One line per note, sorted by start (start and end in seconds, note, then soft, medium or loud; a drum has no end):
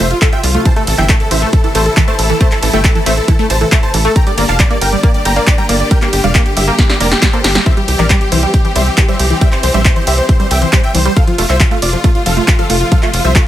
0.00 0.13 F1 loud
0.00 4.12 C3 medium
0.00 0.62 F3 medium
0.00 0.62 A3 medium
0.00 0.62 F4 loud
0.11 0.18 F4 medium
0.11 closed hi-hat soft
0.22 0.29 F4 medium
0.22 0.28 A4 loud
0.22 kick loud
0.22 clap loud
0.22 closed hi-hat medium
0.33 0.42 F4 medium
0.33 0.40 E5 medium
0.33 0.40 G5 loud
0.33 closed hi-hat soft
0.43 0.57 C2 loud
0.43 0.51 F4 medium
0.43 open hi-hat loud
0.54 0.64 A3 medium
0.54 0.62 F4 medium
0.54 closed hi-hat soft
0.65 4.12 E3 medium
0.65 0.69 E3 medium
0.65 4.12 A3 medium
0.65 4.12 E4 loud
0.65 0.73 C5 medium
0.65 0.73 A5 loud
0.65 kick loud
0.65 closed hi-hat medium
0.65 ride medium
0.76 0.83 A3 loud
0.76 0.83 A4 medium
0.76 closed hi-hat soft
0.87 0.94 A1 loud
0.87 0.94 A4 medium
0.87 open hi-hat loud
0.87 ride medium
0.98 1.12 G1 medium
0.98 1.02 E3 medium
0.98 1.05 E5 medium
0.98 1.05 G5 medium
0.98 clap soft
0.98 closed hi-hat soft
1.09 1.16 A3 loud
1.09 1.16 A4 medium
1.09 kick loud
1.09 clap loud
1.09 closed hi-hat medium
1.09 ride medium
1.20 1.27 A4 medium
1.20 closed hi-hat soft
1.31 1.45 A1 medium
1.31 1.35 E3 medium
1.31 1.38 C5 medium
1.31 1.38 E5 loud
1.31 open hi-hat loud
1.31 ride medium
1.42 1.48 A3 loud
1.42 1.49 A4 medium
1.53 1.60 A4 medium
1.53 kick loud
1.53 closed hi-hat medium
1.53 ride medium
1.64 1.68 E3 medium
1.64 1.71 A4 medium
1.64 closed hi-hat soft
1.75 1.89 A1 loud
1.75 1.81 A3 loud
1.75 1.82 C5 medium
1.75 1.82 A5 medium
1.75 open hi-hat loud
1.75 ride medium
1.86 1.93 A4 medium
1.86 closed hi-hat soft
1.97 2.01 E3 medium
1.97 2.04 A4 medium
1.97 kick loud
1.97 clap loud
1.97 closed hi-hat medium
1.97 ride medium
2.08 2.14 A3 loud
2.08 2.15 C5 medium
2.08 2.15 A5 loud
2.08 closed hi-hat soft
2.19 2.32 A1 loud
2.19 2.26 A4 medium
2.19 open hi-hat loud
2.19 ride medium
2.30 2.33 E3 medium
2.30 2.37 A4 medium
2.30 closed hi-hat soft
2.41 2.47 A3 loud
2.41 2.48 C5 medium
2.41 2.48 A5 loud
2.41 kick loud
2.41 closed hi-hat medium
2.41 ride medium
2.52 2.59 A4 medium
2.52 clap soft
2.52 closed hi-hat soft
2.62 2.69 A1 loud
2.62 2.66 E3 medium
2.62 2.70 A4 medium
2.62 open hi-hat loud
2.62 ride medium
2.73 2.87 G1 medium
2.73 2.80 A3 loud
2.73 2.81 E5 medium
2.73 2.81 G5 loud
2.73 closed hi-hat soft
2.84 2.91 A4 medium
2.84 kick loud
2.84 clap loud
2.84 closed hi-hat medium
2.84 ride medium
2.95 2.99 E3 medium
2.95 3.02 A4 medium
2.95 closed hi-hat soft
3.06 3.20 A1 medium
3.06 3.13 A3 medium
3.06 3.13 C5 medium
3.06 3.13 E5 loud
3.06 open hi-hat loud
3.06 ride medium
3.17 3.24 A4 medium
3.17 closed hi-hat soft
3.28 3.32 E3 medium
3.28 3.35 A4 medium
3.28 kick loud
3.28 closed hi-hat medium
3.28 ride medium
3.39 3.45 A3 loud
3.39 3.46 A4 medium
3.39 closed hi-hat soft
3.50 3.64 A1 loud
3.50 3.57 C5 medium
3.50 3.57 A5 loud
3.50 open hi-hat loud
3.50 ride medium
3.61 3.65 E3 medium
3.61 3.68 A4 medium
3.61 closed hi-hat soft
3.72 3.78 A3 loud
3.72 3.79 A4 medium
3.72 kick loud
3.72 clap loud
3.72 closed hi-hat medium
3.72 ride medium
3.83 3.90 C5 medium
3.83 3.90 A5 loud
3.83 closed hi-hat soft
3.94 4.08 A1 loud
3.94 3.98 E3 medium
3.94 4.01 A4 medium
3.94 open hi-hat loud
3.94 ride medium
4.05 4.11 A3 loud
4.05 4.12 A4 medium
4.05 closed hi-hat soft
4.16 7.63 D3 medium
4.16 11.13 G3 medium
4.16 7.63 A#3 medium
4.16 11.13 G4 loud
4.16 4.23 G5 medium
4.16 4.23 A#5 loud
4.16 kick loud
4.16 closed hi-hat medium
4.16 ride medium
4.27 4.31 G3 medium
4.27 4.34 D5 medium
4.27 closed hi-hat soft
4.38 4.45 G1 loud
4.38 4.44 A#3 loud
4.38 4.45 D5 medium
4.38 open hi-hat loud
4.38 ride medium
4.49 4.62 F1 medium
4.49 4.56 F5 medium
4.49 4.56 A5 medium
4.49 clap soft
4.49 closed hi-hat soft
4.60 4.63 G3 medium
4.60 4.67 D5 medium
4.60 kick loud
4.60 clap loud
4.60 closed hi-hat medium
4.60 ride medium
4.71 4.77 A#3 loud
4.71 4.78 D5 medium
4.71 closed hi-hat soft
4.81 4.95 G1 medium
4.81 4.89 A#4 medium
4.81 4.89 G5 loud
4.81 open hi-hat loud
4.81 ride medium
4.92 4.96 G3 medium
4.92 4.99 D5 medium
4.92 closed hi-hat soft
5.03 5.10 A#3 loud
5.03 5.10 D5 medium
5.03 kick loud
5.03 closed hi-hat medium
5.03 ride medium
5.14 5.21 D5 medium
5.14 closed hi-hat soft
5.25 5.39 G1 loud
5.25 5.29 G3 medium
5.25 5.32 G5 medium
5.25 5.32 A#5 loud
5.25 open hi-hat loud
5.25 ride medium
5.36 5.43 A#3 loud
5.36 5.43 D5 medium
5.36 closed hi-hat soft
5.47 5.54 D5 medium
5.47 kick loud
5.47 clap loud
5.47 closed hi-hat medium
5.47 ride medium
5.58 5.62 G3 medium
5.58 5.65 G5 medium
5.58 5.65 A#5 loud
5.58 closed hi-hat soft
5.69 5.83 G1 loud
5.69 5.75 A#3 loud
5.69 5.76 D5 medium
5.69 open hi-hat loud
5.69 ride medium
5.80 5.87 D5 medium
5.80 closed hi-hat soft
5.91 5.95 G3 medium
5.91 5.98 A#4 medium
5.91 5.98 G5 loud
5.91 kick loud
5.91 closed hi-hat medium
5.91 ride medium
6.02 6.08 A#3 loud
6.02 6.09 G4 medium
6.02 clap soft
6.02 closed hi-hat soft
6.13 6.20 G1 loud
6.13 6.20 G4 medium
6.13 open hi-hat loud
6.13 ride medium
6.24 6.38 F1 medium
6.24 6.28 G3 medium
6.24 6.31 D5 medium
6.24 6.31 F5 loud
6.24 closed hi-hat soft
6.35 6.41 A#3 loud
6.35 6.42 G4 medium
6.35 kick loud
6.35 clap loud
6.35 closed hi-hat medium
6.35 ride medium
6.46 6.53 G4 medium
6.46 closed hi-hat soft
6.57 6.70 G1 medium
6.57 6.61 G3 medium
6.57 6.64 G4 medium
6.57 6.64 E5 loud
6.57 open hi-hat loud
6.57 ride medium
6.68 6.74 A#3 loud
6.68 6.75 G4 medium
6.68 closed hi-hat soft
6.79 6.86 G4 medium
6.79 kick loud
6.79 snare medium
6.79 closed hi-hat medium
6.79 ride medium
6.89 6.93 G3 medium
6.89 6.97 G4 medium
6.89 snare medium
6.89 closed hi-hat soft
7.00 7.14 F1 loud
7.00 7.07 A#3 loud
7.00 7.08 A#4 medium
7.00 7.08 D5 loud
7.00 open hi-hat loud
7.00 ride medium
7.11 7.19 G4 medium
7.11 snare medium
7.11 closed hi-hat soft
7.22 7.26 G3 medium
7.22 7.29 G4 medium
7.22 kick loud
7.22 snare medium
7.22 clap loud
7.22 closed hi-hat medium
7.22 ride medium
7.33 7.40 A#3 loud
7.33 7.40 A4 medium
7.33 7.40 C5 medium
7.33 closed hi-hat soft
7.44 7.58 G1 loud
7.44 7.51 G4 medium
7.44 snare loud
7.44 open hi-hat loud
7.44 ride medium
7.55 7.59 G3 medium
7.55 7.62 G4 medium
7.55 snare medium
7.66 7.70 E3 medium
7.66 11.13 E3 medium
7.66 11.13 C4 medium
7.66 7.73 C5 medium
7.66 7.73 E5 loud
7.66 kick loud
7.66 closed hi-hat medium
7.66 ride medium
7.77 7.83 G3 loud
7.77 7.84 G4 medium
7.77 closed hi-hat soft
7.88 7.95 C2 loud
7.88 7.95 G4 medium
7.88 open hi-hat loud
7.88 ride medium
7.99 8.13 A#1 medium
7.99 8.03 E3 medium
7.99 8.06 A#4 medium
7.99 8.06 D5 loud
7.99 clap soft
8.10 8.16 G3 loud
8.10 8.17 G4 medium
8.10 kick loud
8.10 clap loud
8.10 closed hi-hat medium
8.10 ride medium
8.21 8.28 G4 medium
8.21 closed hi-hat soft
8.32 8.46 C2 medium
8.32 8.36 E3 medium
8.32 8.39 E4 medium
8.32 8.39 C5 medium
8.32 open hi-hat loud
8.32 ride medium
8.43 8.49 G3 loud
8.43 8.50 G4 medium
8.43 closed hi-hat soft
8.54 8.61 G4 medium
8.54 kick loud
8.54 closed hi-hat medium
8.54 ride medium
8.65 8.69 E3 medium
8.65 8.72 G4 medium
8.65 closed hi-hat soft
8.76 8.89 C2 loud
8.76 8.82 G3 loud
8.76 8.83 C5 medium
8.76 8.83 E5 medium
8.76 open hi-hat loud
8.76 ride medium
8.87 8.94 G4 medium
8.87 closed hi-hat soft
8.98 9.01 E3 medium
8.98 9.05 G4 medium
8.98 kick loud
8.98 clap loud
8.98 closed hi-hat medium
8.98 ride medium
9.08 9.15 G3 loud
9.08 9.16 C5 medium
9.08 9.16 E5 medium
9.08 closed hi-hat soft
9.19 9.33 C2 loud
9.19 9.27 G4 medium
9.19 open hi-hat loud
9.19 ride medium
9.30 9.34 E3 medium
9.30 9.37 G4 medium
9.30 closed hi-hat soft
9.41 9.48 G3 loud
9.41 9.48 E5 medium
9.41 9.48 G5 loud
9.41 kick loud
9.41 closed hi-hat medium
9.41 ride medium
9.52 9.59 C5 medium
9.52 clap soft
9.52 closed hi-hat soft
9.63 9.70 C2 loud
9.63 9.67 E3 medium
9.63 9.70 C5 medium
9.63 open hi-hat loud
9.63 ride medium
9.74 9.88 A#1 medium
9.74 9.81 G3 loud
9.74 9.81 C5 medium
9.74 9.81 E5 medium
9.74 closed hi-hat soft
9.85 9.92 C5 medium
9.85 kick loud
9.85 clap loud
9.85 closed hi-hat medium
9.85 ride medium
9.96 10.00 E3 medium
9.96 10.03 C5 medium
9.96 closed hi-hat soft
10.07 10.21 C2 medium
10.07 10.13 G3 loud
10.07 10.14 C5 medium
10.07 10.14 E5 medium
10.07 open hi-hat loud
10.07 ride medium
10.18 10.25 C5 medium
10.18 closed hi-hat soft
10.29 10.33 E3 medium
10.29 10.36 C5 medium
10.29 kick loud
10.29 closed hi-hat medium
10.29 ride medium
10.40 10.46 G3 loud
10.40 10.47 C5 medium
10.40 closed hi-hat soft
10.51 10.65 C2 loud
10.51 10.58 E5 medium
10.51 10.58 G5 medium
10.51 open hi-hat loud
10.51 ride medium
10.62 10.66 E3 medium
10.62 10.69 C5 medium
10.62 closed hi-hat soft
10.73 10.79 G3 loud
10.73 10.80 C5 medium
10.73 kick loud
10.73 clap loud
10.73 closed hi-hat medium
10.73 ride medium
10.84 10.91 E5 medium
10.84 10.91 G5 loud
10.84 closed hi-hat soft
10.95 11.08 C2 loud
10.95 10.98 E3 medium
10.95 11.02 C5 medium
10.95 open hi-hat loud
10.95 ride medium
11.05 11.12 G3 loud
11.05 11.13 C5 medium
11.16 13.48 C3 medium
11.16 13.48 F3 medium
11.16 13.48 A3 medium
11.16 13.48 F4 loud
11.16 11.24 A4 medium
11.16 11.24 F5 loud
11.16 kick loud
11.16 closed hi-hat medium
11.16 ride medium
11.27 11.31 F3 medium
11.27 11.35 F4 medium
11.27 closed hi-hat soft
11.38 11.45 F1 loud
11.38 11.45 A3 loud
11.38 11.46 F4 medium
11.38 open hi-hat loud
11.38 ride medium
11.49 11.63 C2 medium
11.49 11.56 C5 medium
11.49 11.56 E5 medium
11.49 clap soft
11.49 closed hi-hat soft
11.60 11.64 F3 medium
11.60 11.67 F4 medium
11.60 kick loud
11.60 clap loud
11.60 closed hi-hat medium
11.60 ride medium
11.71 11.78 A3 loud
11.71 11.78 F4 medium
11.71 closed hi-hat soft
11.82 11.96 F1 medium
11.82 11.89 F4 medium
11.82 11.89 D5 loud
11.82 open hi-hat loud
11.82 ride medium
11.93 11.97 F3 medium
11.93 12.00 F4 medium
11.93 closed hi-hat soft
12.04 12.10 A3 loud
12.04 12.11 F4 medium
12.04 kick loud
12.04 closed hi-hat medium
12.04 ride medium
12.15 12.22 F4 medium
12.15 closed hi-hat soft
12.26 12.40 F1 loud
12.26 12.30 F3 medium
12.26 12.33 A4 medium
12.26 12.33 F5 loud
12.26 open hi-hat loud
12.26 ride medium
12.37 12.43 A3 loud
12.37 12.44 F4 medium
12.37 closed hi-hat soft
12.48 12.55 F4 medium
12.48 kick loud
12.48 clap loud
12.48 closed hi-hat medium
12.48 ride medium
12.59 12.63 F3 medium
12.59 12.66 A4 medium
12.59 12.66 F5 loud
12.59 closed hi-hat soft
12.70 12.83 F1 loud
12.70 12.76 A3 loud
12.70 12.77 F4 medium
12.70 open hi-hat loud
12.70 ride medium
12.81 12.88 F4 medium
12.81 closed hi-hat soft
12.92 12.95 F3 medium
12.92 12.99 A4 medium
12.92 12.99 F5 loud
12.92 kick loud
12.92 closed hi-hat medium
12.92 ride medium
13.03 13.09 A3 loud
13.03 13.10 F4 medium
13.03 clap soft
13.03 closed hi-hat soft
13.13 13.20 F1 loud
13.13 13.21 F4 medium
13.13 open hi-hat loud
13.13 ride medium
13.24 13.38 C2 medium
13.24 13.28 F3 medium
13.24 13.32 C5 medium
13.24 13.32 E5 medium
13.24 closed hi-hat soft
13.35 13.42 A3 loud
13.35 13.43 F4 medium
13.35 kick loud
13.35 clap loud
13.35 closed hi-hat medium
13.35 ride medium